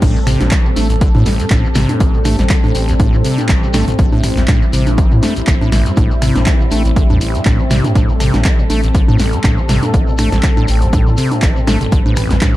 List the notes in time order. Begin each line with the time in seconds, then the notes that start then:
Already playing: G3 C4
0.02 A1 A2 A4, kick, closed hi-hat, crash, high conga, shekere
0.16 A3, shekere
0.27 C3, finger snap, mid tom, open hi-hat, shekere
0.40 A1 A2, snare, closed hi-hat, high conga, shekere
0.51 E3, finger snap, kick, snare, clap, closed hi-hat, shekere
0.65 A2, shekere
0.76 A1 A3, open hi-hat, high conga, shekere
0.90 A1, closed hi-hat, shekere
1.01 D3, kick, closed hi-hat, shekere
1.15 A2, mid tom, high conga, shekere
1.25 A1, snare, open hi-hat, shekere
1.39 A2, closed hi-hat, shekere
1.50 A1 A2, kick, clap, closed hi-hat, high conga, shekere
1.64 A3, shekere
1.75 C3, finger snap, snare, mid tom, open hi-hat, shekere
1.89 A2, closed hi-hat, high conga, shekere
2.00 A1 E3, kick, closed hi-hat, shekere
2.14 A2, shekere
2.25 A3, finger snap, mid tom, open hi-hat, high conga, shekere
2.39 A1, snare, closed hi-hat, shekere
2.50 D3, finger snap, kick, snare, clap, closed hi-hat, shekere
2.63 A2, high conga, shekere
2.75 A1, open hi-hat, shekere
2.88 A2, closed hi-hat, shekere
2.99 A2, kick, closed hi-hat, high conga, shekere
3.13 A2 A3, shekere
3.24 C3, open hi-hat, shekere
3.38 A2, closed hi-hat, high conga, shekere
3.49 A1 E3, kick, clap, closed hi-hat, shekere
3.63 A2, shekere
3.74 A3, finger snap, snare, mid tom, open hi-hat, high conga, shekere
3.88 A1, closed hi-hat, mid tom, shekere
3.99 A1 D3 E4, kick, closed hi-hat, shekere
4.12 A2, high conga, shekere
4.23 A1, finger snap, mid tom, open hi-hat, shekere
4.37 A1 A2, snare, closed hi-hat, shekere
4.48 A2, finger snap, kick, snare, clap, closed hi-hat, high conga, shekere
4.62 A3, shekere
4.73 A1 C3, open hi-hat, shekere
4.86 A2, closed hi-hat, high conga, shekere
4.98 E3, kick, closed hi-hat, shekere
5.11 A2, mid tom, shekere
5.23 A3, snare, open hi-hat, high conga, shekere
5.36 A1, closed hi-hat, shekere
5.47 A1 D3, kick, clap, closed hi-hat, shekere
5.61 A2, high conga, shekere
5.72 A1, finger snap, snare, mid tom, open hi-hat, shekere
5.86 A2, closed hi-hat, shekere
5.96 A1 A2, kick, closed hi-hat, high conga, shekere
6.11 A3, shekere
6.22 C3, finger snap, mid tom, open hi-hat, shekere
6.36 A1 A2, snare, closed hi-hat, high conga, shekere
6.46 E3, finger snap, kick, snare, clap, closed hi-hat, shekere
6.60 A2, shekere
6.71 A1 A3, open hi-hat, high conga, shekere
6.85 A1, closed hi-hat, shekere
6.96 D3, kick, closed hi-hat, shekere
7.09 E2 A2, high conga, shekere
7.21 A1, open hi-hat, shekere
7.35 A2, closed hi-hat, shekere
7.45 A1 A2, kick, clap, closed hi-hat, high conga, shekere
7.59 A3, shekere
7.70 C3, finger snap, snare, mid tom, open hi-hat, shekere
7.84 A2, closed hi-hat, mid tom, high conga, shekere
7.95 A1 A2 A4, kick, closed hi-hat, high conga, shekere
8.09 A3, shekere
8.20 C3, finger snap, mid tom, open hi-hat, shekere
8.33 A1 A2, snare, closed hi-hat, high conga, shekere
8.45 E3, finger snap, kick, snare, clap, closed hi-hat, shekere
8.59 A2, shekere
8.70 A1 A3, open hi-hat, high conga, shekere
8.83 A1, closed hi-hat, shekere
8.94 D3, kick, closed hi-hat, shekere
9.08 A2, mid tom, high conga, shekere
9.19 A1, snare, open hi-hat, shekere
9.33 A2, closed hi-hat, shekere
9.44 A1 A2, kick, clap, closed hi-hat, high conga, shekere
9.58 A3, shekere
9.69 C3, finger snap, snare, mid tom, open hi-hat, shekere
9.83 A2, closed hi-hat, high conga, shekere
9.94 A1 E3, kick, closed hi-hat, shekere
10.07 A2, shekere
10.18 A3, finger snap, mid tom, open hi-hat, high conga, shekere
10.32 A1, snare, closed hi-hat, shekere
10.43 D3, finger snap, kick, snare, clap, closed hi-hat, shekere
10.57 A2, high conga, shekere
10.68 A1, open hi-hat, shekere
10.81 A2, closed hi-hat, shekere
10.93 A2, kick, closed hi-hat, high conga, shekere
11.07 A2 A3, shekere
11.17 C3, open hi-hat, shekere
11.32 A2, closed hi-hat, high conga, shekere
11.42 A1 E3, kick, clap, closed hi-hat, shekere
11.56 A2, shekere
11.67 A3, finger snap, snare, mid tom, open hi-hat, high conga, shekere
11.81 A1, closed hi-hat, mid tom, shekere
11.92 A1 D3 B4, kick, closed hi-hat, shekere
12.06 A2, high conga, shekere
12.16 A1, finger snap, mid tom, open hi-hat, shekere
12.30 A1 A2, snare, closed hi-hat, shekere
12.41 A2, finger snap, kick, snare, clap, closed hi-hat, high conga, shekere